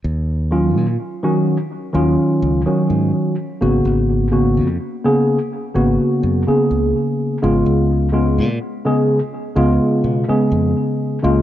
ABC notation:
X:1
M:4/4
L:1/16
Q:1/4=63
K:G#dor
V:1 name="Tine electric piano"
z2 [D,F,CE] z2 [D,F,CF] z2 [D,F,CE]3 [D,F,CF]3 z [C,A,B,F]- | [C,A,B,F]2 [C,A,B,F] z2 [C,A,B,G] z2 [C,A,B,F]3 [C,A,B,G]4 [C,G,B,E]- | [C,G,B,E]2 [C,G,B,E] z2 [C,G,B,G] z2 [C,G,B,E]3 [C,G,B,G]4 [C,G,A,E] |]
V:2 name="Fingered electric bass" clef=bass
D,,3 A,, z4 D,, z C,, z G,, z2 G,,, | G,,,3 E,, z4 G,,, z F,, z C,, z2 G,,, | C,,3 A,, z4 C,, z B,, z E,, z2 C,, |]